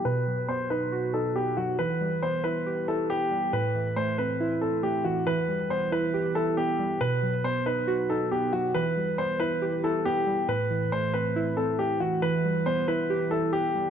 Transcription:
<<
  \new Staff \with { instrumentName = "Grand piano" } { \time 4/4 \key e \minor \tempo 4 = 138 b'4 c''8 b'4 a'8 g'8 fis'8 | b'4 c''8 b'4 a'8 g'4 | b'4 c''8 b'4 a'8 g'8 fis'8 | b'4 c''8 b'4 a'8 g'4 |
b'4 c''8 b'4 a'8 g'8 fis'8 | b'4 c''8 b'4 a'8 g'4 | b'4 c''8 b'4 a'8 g'8 fis'8 | b'4 c''8 b'4 a'8 g'4 | }
  \new Staff \with { instrumentName = "Synth keys" } { \time 4/4 \key e \minor b,8 fis8 b8 dis'8 fis'8 dis'8 b8 fis8 | e8 g8 b8 e'8 g'8 e'8 b8 g8 | a,8 e8 a8 c'8 e'8 c'8 a8 e8 | e8 g8 b8 e'8 g'8 e'8 b8 g8 |
b,8 fis8 b8 dis'8 fis'8 dis'8 b8 fis8 | e8 g8 b8 e'8 g'8 e'8 b8 g8 | a,8 e8 a8 c'8 e'8 c'8 a8 e8 | e8 g8 b8 e'8 g'8 e'8 b8 g8 | }
>>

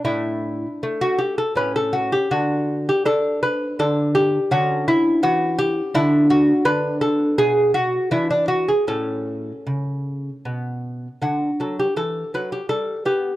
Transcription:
<<
  \new Staff \with { instrumentName = "Lute" } { \time 3/4 \key d \major \tempo 4 = 81 << { e'4~ e'16 fis'16 g'16 a'16 b'16 a'16 fis'16 g'16 | fis'8. g'16 a'8 b'8 a'8 g'8 | fis'8 e'8 fis'8 g'8 e'8 fis'8 | \key a \major b'8 a'8 gis'8 fis'8 e'16 d'16 fis'16 gis'16 |
a'2~ a'8 r8 | \key d \major fis'8 a'16 g'16 a'8 b'16 g'16 a'8 g'8 | } \\ { d'2 cis'4 | d'2 d'4 | cis'2 d'4 | d'2 d'4 |
cis'2. | r2. | } >> }
  \new Staff \with { instrumentName = "Lute" } { \clef bass \time 3/4 \key d \major a,4 a4 a,4 | d4 d'4 d4 | d4 e4 d4 | \key a \major d4 b,4 e4 |
a,4 cis4 b,4 | \key d \major d8 fis8 e8 fis8 g8 b8 | }
>>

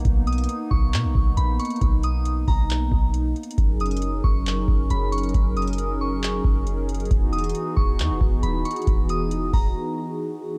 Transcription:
<<
  \new Staff \with { instrumentName = "Synth bell" } { \time 4/4 \key fis \mixolydian \tempo 4 = 136 r8 dis'''4 cis'''4. b''8 cis'''8 | r8 dis'''4 ais''4. r4 | r8 dis'''4 cis'''4. b''8 cis'''8 | r8 dis'''4 cis'''4. r4 |
r8 dis'''4 cis'''4. b''8 cis'''8 | r8 dis'''4 ais''4. r4 | }
  \new Staff \with { instrumentName = "Analog synth pad" } { \time 4/4 \key fis \mixolydian <ais b dis'>1~ | <ais b dis'>1 | <fis cis' gis' ais'>1~ | <fis cis' gis' ais'>1 |
<e b dis' fis'>1~ | <e b dis' fis'>1 | }
  \new Staff \with { instrumentName = "808-style bass" } { \clef bass \time 4/4 \key fis \mixolydian b,,4 r8 b,,8 b,16 b,,16 b,,8 ais,,8 r8 | b,,4. b,,4 b,,4 r8 | fis,,4. fis,,4 fis,,8 fis,,4 | fis,,2~ fis,,8 fis,,4. |
e,,4 r8 e,,8 e,16 e,,16 e,,8 dis,,8 r8 | e,,4. e,,8 r2 | }
  \new DrumStaff \with { instrumentName = "Drums" } \drummode { \time 4/4 <hh bd>8 hh32 hh32 hh32 hh32 hh8 bd8 <hc hh>8 bd8 hh8 hh32 hh32 hh32 hh32 | <hh bd>8 hh8 hh8 <hho bd>8 <hc hh>8 bd8 \tuplet 3/2 { hh16 r16 r16 hh16 hh16 hh16 } | <hh bd>8 hh32 hh32 hh32 hh32 hh8 bd8 <hc hh>8 bd8 hh8 hh32 hh32 hh32 hh32 | <hh bd>8 hh32 hh32 hh32 hh32 hh4 <hc hh>8 bd8 hh8 hh32 hh32 hh32 hh32 |
<hh bd>8 hh32 hh32 hh32 hh32 hh8 bd8 <hc hh>8 bd8 hh8 hh32 hh32 hh32 hh32 | <hh bd>8 hh8 hh8 <hho bd>8 r4 r4 | }
>>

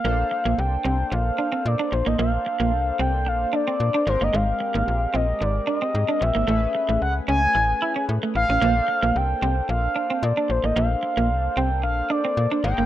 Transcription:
<<
  \new Staff \with { instrumentName = "Analog synth lead" } { \time 4/4 \key bes \major \tempo 4 = 112 f''4 g''4 f''4 d''8 c''16 ees''16 | f''4. g''8 f''8 d''4 c''16 ees''16 | f''4. ees''8 d''8 ees''4 e''8~ | e''4 ges''8 gis''4. r8 f''8~ |
f''4 g''4 f''4 d''8 c''16 ees''16 | f''4. g''8 f''8 d''4 g''8 | }
  \new Staff \with { instrumentName = "Analog polysynth" } { \time 4/4 \key bes \major <bes d' a' c''>1~ | <bes d' a' c''>2.~ <bes d' a' c''>8 <aes bes c' g' bes'>8~ | <aes bes c' g' bes'>1 | <a cis' gis' a' b'>1 |
<bes d' a' c''>1~ | <bes d' a' c''>2.~ <bes d' a' c''>8 <bes aes' bes' c''>8 | }
  \new Staff \with { instrumentName = "Clean electric guitar" } { \time 4/4 \key bes \major bes16 r8 bes16 r8 c'16 r8. d'16 c'16 r16 d'16 r16 bes16 | bes16 r8 bes16 r8 c'16 r8. d'16 c'16 r16 d'16 r16 bes16 | aes16 r8 bes16 r8 c'16 r8. d'16 c'16 r16 d'16 r16 bes16 | a16 r8 a16 r8 cis'16 r8. e'16 cis'16 r16 a16 r16 cis'16 |
bes16 r8 bes16 r8 c'16 r8. d'16 c'16 r16 d'16 r16 bes16 | bes16 r8 bes16 r8 c'16 r8. d'16 c'16 r16 d'16 r16 bes16 | }
  \new Staff \with { instrumentName = "FM bass" } { \clef bass \time 4/4 \key bes \major bes,,8 r16 bes,,16 c,8 c,8 bes,,8 r8 bes,16 r16 bes,,16 a,,16 | bes,,8 r16 bes,,16 c,8 c,8 bes,,8 r8 bes,16 r16 aes,,16 g,,16 | aes,,8 r16 aes,,16 bes,,8 bes,,8 aes,,8 r8 aes,16 r16 bes,,16 aes,,16 | a,,8 r16 a,,16 cis,8 cis,8 a,,8 r8 a,16 r16 a,,16 a,,16 |
bes,,8 r16 bes,,16 c,8 c,8 bes,,8 r8 bes,16 r16 bes,,16 a,,16 | bes,,8 r16 bes,,16 c,8 c,8 bes,,8 r8 bes,16 r16 aes,,16 g,,16 | }
>>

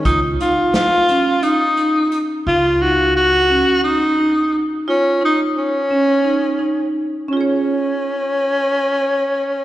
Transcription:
<<
  \new Staff \with { instrumentName = "Marimba" } { \time 7/8 \key des \major \tempo 4 = 87 f'8 ees'4 des'8 ees'8 ees'4 | f'8 ees'4 des'8 ees'8 ees'4 | f'8 ees'4 des'8 ees'8 ees'4 | <des' f' aes' des''>2.~ <des' f' aes' des''>8 | }
  \new Staff \with { instrumentName = "Tenor saxophone" } { \time 7/8 \key des \major ees'8 f'8 f'4 ees'4 r8 | f'8 ges'8 ges'4 ees'4 r8 | des'8 ees'8 des'2 r8 | des'2.~ des'8 | }
  \new Staff \with { instrumentName = "Upright bass" } { \clef bass \time 7/8 \key des \major des,8 r2. | des,2 r4. | r2. r8 | r2. r8 | }
  \new DrumStaff \with { instrumentName = "Drums" } \drummode { \time 7/8 <hh bd>8 hh8 <hh sn>8 hh8 hh8 hh8 hh8 | r4 r4 r4. | r4 r4 r4. | r4 r4 r4. | }
>>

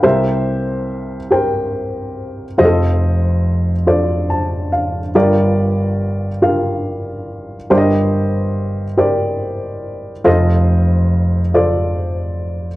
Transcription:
<<
  \new Staff \with { instrumentName = "Upright piano" } { \time 6/8 \key c \dorian \tempo 4. = 47 << { <a' f''>16 r2 r8. | r2 a''8 f''8 | r2. | r2. |
r2. | } \\ { <g' bes' c'' e''>4. <g' bes' c'' g''>4. | <f' g' a' c'' ees''>4. <f' a' c'' d''>4. | <f' g' bes' d''>4. <f' g' bes' f''>4. | <g' bes' c'' d'' ees''>4. <g' bes' c'' d''>4. |
<f' a' c'' ees''>4. <f' a' c'' d''>4. | } >> }
  \new Staff \with { instrumentName = "Upright piano" } { \clef bass \time 6/8 \key c \dorian <c, c>2. | <f,, f,>2. | <g,, g,>2. | <g,, g,>2. |
<f,, f,>2. | }
>>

